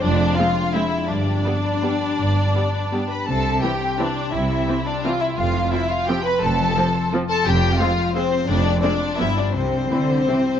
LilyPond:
<<
  \new Staff \with { instrumentName = "Violin section" } { \time 3/4 \key c \major \tempo 4 = 169 d''4 f''4 e''4 | d''2.~ | d''2~ d''8 b''8 | a''4 g''4 d''4 |
e''4. d''8 f''8 e''8 | f''4 e''8 f''8 g''8 b''8 | a''2 r8 a''8 | g''4 f''4 c''4 |
d''4 d''4 e''8 d''8 | c''2. | }
  \new Staff \with { instrumentName = "Harp" } { \time 3/4 \key c \major <f, aes c' aes' c''>8 aes8 d'8 c''8 aes'8 c''8 | g,8 g8 d'8 b'8 g'8 b'8 | g,8 g8 d'8 b'8 g'8 b'8 | c8 g8 e'8 c''8 g'8 c''8 |
c8 g8 e'8 c''8 g'8 c''8 | f,8 f8 f'8 c''8 f'8 c''8 | f,8 f8 f'8 c''8 f'8 c''8 | f,8 aes8 f'8 c''8 aes'8 c''8 |
f,8 aes8 f'8 c''8 g,8 <f' b'>8 | c8 g8 e'8 c''8 g'8 c''8 | }
  \new Staff \with { instrumentName = "Violin section" } { \time 3/4 \key c \major d'4 f'4 e'4 | d'2.~ | d'2~ d'8 b'8 | a'4 g'4 d'4 |
e'4. d'8 f'8 e'8 | f'4 e'8 f'8 g'8 b'8 | a'2 r8 a'8 | g'4 f'4 c'4 |
d'4 d'4 e'8 d'8 | c'2. | }
  \new Staff \with { instrumentName = "Viola section" } { \time 3/4 \key c \major r4 <aes c'>4 <aes c'>4 | r4 <g b>4 <g b>4 | r4 <g b>4 <g b>4 | r4 <e c'>4 <e c'>4 |
r4 <e c'>4 <e c'>4 | r4 <f c'>4 <f c'>4 | r4 <f c'>4 <f c'>4 | r4 <aes c'>4 <aes c'>4 |
r4 <aes c'>4 <f b>4 | r4 <e c'>4 <e c'>4 | }
  \new Staff \with { instrumentName = "Cello section" } { \clef bass \time 3/4 \key c \major f,4 r2 | g,4 r2 | g,4 r2 | c4 r2 |
c4 r2 | f,4 r2 | f,4 r2 | f,4 r2 |
f,4 r4 g,4 | c4 d4 c4 | }
  \new Staff \with { instrumentName = "Double bass section" } { \clef bass \time 3/4 \key c \major f,,4 r2 | g,,4 r2 | g,,4 r2 | c,4 r2 |
c,4 r2 | f,,4 r2 | f,,4 r2 | f,,4 r2 |
f,,4 r4 g,,4 | c,4 r2 | }
>>